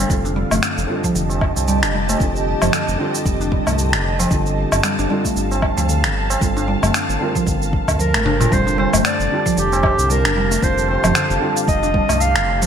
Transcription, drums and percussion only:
0.10 kick loud
0.10 shaker medium
0.25 tabla tin medium
0.25 shaker soft
0.51 tabla ge medium
0.51 low woodblock medium
0.51 shaker medium
0.63 finger snap medium
0.63 shaker medium
0.78 tabla tin soft
0.78 shaker soft
0.88 tabla tin soft
1.04 kick medium
1.04 shaker medium
1.15 shaker medium
1.30 tabla na medium
1.30 shaker soft
1.41 kick loud
1.41 tabla ge medium
1.41 low woodblock medium
1.56 tabla na medium
1.56 shaker medium
1.68 shaker medium
1.83 finger snap medium
1.83 shaker soft
2.09 tabla na medium
2.09 shaker medium
2.20 kick loud
2.20 shaker medium
2.35 tabla tin medium
2.35 shaker soft
2.62 tabla ge medium
2.62 low woodblock medium
2.62 shaker medium
2.73 finger snap medium
2.73 shaker medium
2.88 tabla tin soft
2.88 shaker soft
2.99 tabla tin soft
3.15 shaker medium
3.25 kick loud
3.25 shaker medium
3.41 shaker soft
3.52 kick loud
3.67 tabla ge medium
3.67 low woodblock medium
3.67 shaker medium
3.78 shaker medium
3.93 finger snap medium
3.93 shaker soft
4.05 tabla tin medium
4.19 tabla na medium
4.19 shaker medium
4.31 kick loud
4.31 shaker medium
4.46 tabla tin medium
4.46 shaker soft
4.72 tabla ge medium
4.72 low woodblock medium
4.72 shaker medium
4.83 finger snap medium
4.83 shaker medium
4.99 tabla tin soft
4.99 shaker soft
5.25 kick medium
5.25 shaker medium
5.36 shaker medium
5.51 tabla na medium
5.51 shaker soft
5.62 kick loud
5.62 tabla ge medium
5.62 low woodblock medium
5.77 tabla na medium
5.77 shaker medium
5.89 shaker medium
6.04 finger snap medium
6.04 shaker soft
6.30 tabla na medium
6.30 shaker medium
6.41 kick loud
6.41 shaker medium
6.57 tabla na medium
6.57 tabla tin medium
6.57 shaker soft
6.83 tabla na medium
6.83 tabla ge medium
6.83 low woodblock medium
6.83 shaker medium
6.94 finger snap medium
6.94 shaker medium
7.09 tabla tin soft
7.09 shaker soft
7.21 tabla tin medium
7.35 kick medium
7.35 shaker medium
7.46 kick loud
7.46 tabla tin soft
7.46 shaker medium
7.62 shaker soft
7.73 kick loud
7.88 kick medium
7.88 tabla ge medium
7.88 low woodblock medium
7.88 shaker medium
8.00 shaker medium
8.14 finger snap medium
8.14 shaker soft
8.25 high tom medium
8.25 tabla tin medium
8.40 mid tom medium
8.40 tabla na medium
8.40 shaker medium
8.52 kick loud
8.52 shaker medium
8.67 shaker soft
8.78 tabla na medium
8.93 tabla ge medium
8.93 low woodblock medium
8.93 shaker medium
9.05 finger snap medium
9.05 shaker medium
9.20 shaker soft
9.46 kick medium
9.46 shaker medium
9.57 tabla tin medium
9.57 shaker medium
9.72 tabla na medium
9.72 tabla tin medium
9.72 shaker soft
9.83 kick loud
9.83 tabla na medium
9.83 tabla ge medium
9.83 low woodblock medium
9.99 shaker medium
10.10 shaker medium
10.25 finger snap medium
10.25 shaker soft
10.51 shaker medium
10.63 kick loud
10.63 shaker medium
10.78 shaker soft
10.88 tabla na medium
11.04 tabla ge medium
11.04 low woodblock medium
11.04 shaker medium
11.15 finger snap medium
11.15 shaker medium
11.30 shaker soft
11.57 shaker medium
11.68 kick loud
11.68 shaker medium
11.83 shaker soft
11.94 kick loud
11.94 tabla tin medium
12.09 tabla ge medium
12.09 low woodblock medium
12.09 shaker medium
12.21 shaker medium
12.36 finger snap medium
12.36 shaker soft
12.47 tabla na soft
12.62 shaker medium

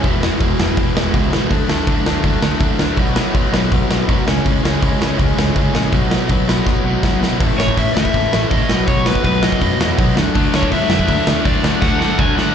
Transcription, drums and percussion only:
0.04 kick loud
0.04 open hi-hat medium
0.23 snare loud
0.40 kick loud
0.40 open hi-hat medium
0.60 snare loud
0.77 kick loud
0.77 open hi-hat medium
0.97 snare loud
1.14 kick loud
1.14 open hi-hat medium
1.33 snare loud
1.51 kick loud
1.51 open hi-hat medium
1.70 snare loud
1.87 kick loud
1.87 open hi-hat medium
2.06 snare loud
2.24 kick loud
2.24 open hi-hat medium
2.42 snare loud
2.60 kick loud
2.60 open hi-hat medium
2.79 snare loud
2.97 kick loud
2.97 open hi-hat medium
3.16 snare loud
3.35 kick loud
3.35 open hi-hat soft
3.54 snare loud
3.72 kick loud
3.72 open hi-hat medium
3.91 snare loud
4.09 kick loud
4.09 open hi-hat soft
4.28 snare loud
4.46 kick loud
4.46 open hi-hat medium
4.65 snare loud
4.83 kick loud
4.83 open hi-hat medium
5.02 snare loud
5.19 kick loud
5.19 open hi-hat medium
5.39 snare loud
5.56 kick loud
5.56 open hi-hat medium
5.75 snare medium
5.92 kick loud
5.92 open hi-hat medium
6.11 snare loud
6.29 kick loud
6.29 open hi-hat medium
6.49 snare loud
6.67 kick loud
6.67 snare medium
7.03 kick loud
7.03 snare medium
7.23 snare medium
7.40 kick loud
7.40 open hi-hat medium
7.60 snare loud
7.68 kick medium
7.78 kick medium
7.78 open hi-hat medium
7.97 snare loud
8.05 kick medium
8.14 kick loud
8.14 open hi-hat medium
8.33 snare loud
8.51 kick loud
8.51 open hi-hat medium
8.70 snare loud
8.87 kick loud
8.87 open hi-hat medium
9.06 snare loud
9.15 kick medium
9.24 kick medium
9.24 open hi-hat medium
9.43 snare loud
9.52 kick medium
9.61 kick medium
9.61 open hi-hat medium
9.81 snare loud
9.98 kick loud
9.98 open hi-hat medium
10.17 snare loud
10.35 kick loud
10.35 open hi-hat medium
10.54 snare loud
10.63 kick medium
10.71 kick medium
10.71 open hi-hat medium
10.90 snare loud
10.99 kick medium
11.08 kick medium
11.08 open hi-hat medium
11.27 snare loud
11.45 kick loud
11.45 open hi-hat medium
11.64 snare loud
11.82 kick loud
11.82 snare medium
12.01 snare medium
12.19 kick loud
12.38 snare medium

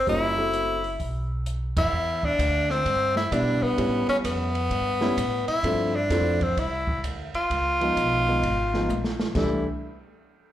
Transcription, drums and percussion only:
0.07 kick soft
0.07 open hi-hat soft
0.53 closed hi-hat medium
0.84 open hi-hat soft
1.00 kick soft
1.00 open hi-hat soft
1.46 closed hi-hat medium
1.77 kick medium
1.77 ride medium
2.23 kick soft
2.39 kick soft
2.39 hi-hat pedal soft
2.39 ride medium
2.70 snare soft
2.85 kick soft
2.85 ride medium
3.16 snare soft
3.32 kick soft
3.32 hi-hat pedal medium
3.32 ride medium
3.78 kick soft
3.78 ride medium
4.09 snare soft
4.09 ride soft
4.24 kick soft
4.24 hi-hat pedal soft
4.24 ride medium
4.55 ride soft
4.71 kick soft
4.71 ride medium
5.01 snare medium
5.17 kick soft
5.17 hi-hat pedal medium
5.17 ride medium
5.48 ride soft
5.64 kick soft
5.64 ride medium
6.10 kick soft
6.10 snare soft
6.10 hi-hat pedal medium
6.10 ride medium
6.41 kick soft
6.41 ride soft
6.57 kick soft
6.57 ride medium
6.87 kick soft
7.03 kick soft
7.03 hi-hat pedal soft
7.03 ride medium
7.34 ride soft
7.50 kick soft
7.50 ride medium
7.81 ride soft
7.97 kick soft
7.97 hi-hat pedal medium
7.97 ride medium
8.43 kick soft
8.43 ride medium
8.74 snare soft
8.89 hi-hat pedal soft
8.89 high tom soft
9.04 snare medium
9.19 snare medium
9.35 kick medium
9.35 snare medium
9.35 crash medium

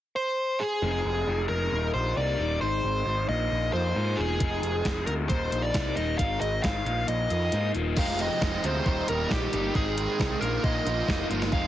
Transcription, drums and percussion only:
4.40 kick loud
4.40 closed hi-hat medium
4.63 closed hi-hat soft
4.85 kick loud
4.85 snare medium
4.85 closed hi-hat medium
5.07 closed hi-hat medium
5.30 kick loud
5.30 closed hi-hat medium
5.52 closed hi-hat medium
5.74 kick loud
5.74 snare loud
5.74 closed hi-hat medium
5.97 closed hi-hat medium
6.19 kick loud
6.19 closed hi-hat medium
6.42 closed hi-hat medium
6.64 kick loud
6.64 snare medium
6.64 closed hi-hat medium
6.86 closed hi-hat medium
7.08 closed hi-hat medium
7.30 closed hi-hat medium
7.52 closed hi-hat medium
7.75 closed hi-hat medium
7.96 kick loud
7.96 crash medium
8.19 closed hi-hat medium
8.41 kick loud
8.41 snare loud
8.64 closed hi-hat medium
8.86 kick loud
9.08 closed hi-hat medium
9.31 kick loud
9.31 snare loud
9.53 closed hi-hat medium
9.75 kick loud
9.98 closed hi-hat medium
10.20 kick loud
10.20 snare loud
10.42 closed hi-hat medium
10.64 kick loud
10.87 closed hi-hat medium
11.08 kick loud
11.08 snare loud
11.31 closed hi-hat medium
11.42 snare medium
11.52 kick loud

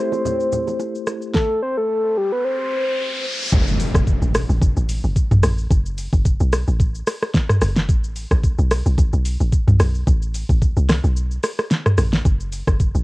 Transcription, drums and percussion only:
0.12 high bongo soft
0.12 low bongo medium
0.12 shaker medium
0.25 low conga medium
0.25 shaker medium
0.40 shaker medium
0.52 low conga medium
0.52 shaker loud
0.67 low bongo medium
0.67 shaker soft
0.80 high bongo medium
0.80 shaker medium
0.95 shaker medium
1.07 cross-stick loud
1.07 shaker medium
1.22 shaker soft
1.34 kick loud
1.34 snare medium
3.53 kick loud
3.53 shaker medium
3.68 shaker medium
3.80 open hi-hat medium
3.80 shaker medium
3.95 kick loud
3.95 cross-stick medium
3.95 shaker medium
4.07 kick loud
4.07 shaker medium
4.22 shaker medium
4.35 cross-stick loud
4.35 open hi-hat medium
4.35 shaker loud
4.50 shaker medium
4.62 kick loud
4.62 shaker medium
4.77 shaker medium
4.89 open hi-hat medium
4.89 shaker loud
5.04 shaker soft
5.16 kick loud
5.16 shaker medium
5.31 mid tom loud
5.31 shaker medium
5.43 cross-stick loud
5.43 open hi-hat medium
5.43 shaker loud
5.58 shaker medium
5.71 kick loud
5.71 shaker medium
5.86 shaker medium
5.98 open hi-hat soft
5.98 shaker medium
6.13 kick loud
6.13 shaker medium
6.25 kick loud
6.25 shaker medium
6.40 shaker medium
6.52 cross-stick loud
6.52 open hi-hat medium
6.52 shaker loud
6.68 shaker medium
6.80 kick loud
6.80 shaker medium
6.95 shaker medium
7.07 cross-stick loud
7.07 open hi-hat medium
7.07 shaker loud
7.22 cross-stick medium
7.22 shaker soft
7.34 kick medium
7.34 snare medium
7.34 shaker medium
7.49 cross-stick loud
7.49 mid tom loud
7.49 shaker medium
7.61 cross-stick loud
7.61 open hi-hat medium
7.61 shaker medium
7.76 snare medium
7.76 shaker medium
7.89 kick loud
7.89 shaker medium
8.04 shaker medium
8.16 open hi-hat medium
8.16 shaker medium
8.31 kick loud
8.31 cross-stick medium
8.31 shaker medium
8.44 kick loud
8.44 shaker medium
8.59 shaker medium
8.71 cross-stick loud
8.71 open hi-hat medium
8.71 shaker medium
8.86 shaker medium
8.98 kick loud
8.98 shaker medium
9.13 shaker medium
9.25 open hi-hat medium
9.25 shaker loud
9.40 shaker soft
9.52 kick loud
9.52 shaker medium
9.68 mid tom loud
9.68 shaker medium
9.80 cross-stick loud
9.80 open hi-hat medium
9.80 shaker medium
9.95 shaker medium
10.07 kick loud
10.07 shaker medium
10.22 shaker medium
10.34 open hi-hat medium
10.34 shaker medium
10.49 kick loud
10.49 shaker medium
10.62 kick loud
10.62 shaker medium
10.77 shaker medium
10.89 cross-stick loud
10.89 snare medium
10.89 open hi-hat medium
10.89 shaker loud
11.04 shaker medium
11.17 shaker medium
11.31 shaker medium
11.43 cross-stick loud
11.43 open hi-hat medium
11.43 shaker loud
11.59 cross-stick medium
11.59 shaker soft
11.71 snare medium
11.71 shaker medium
11.86 cross-stick loud
11.86 mid tom loud
11.86 shaker medium
11.98 cross-stick loud
11.98 open hi-hat medium
11.98 shaker loud
12.13 snare medium
12.13 shaker medium
12.25 kick loud
12.25 shaker medium
12.40 shaker medium
12.52 open hi-hat medium
12.52 shaker medium
12.67 kick loud
12.67 cross-stick medium
12.67 shaker medium
12.80 kick loud
12.80 shaker medium
12.95 shaker medium

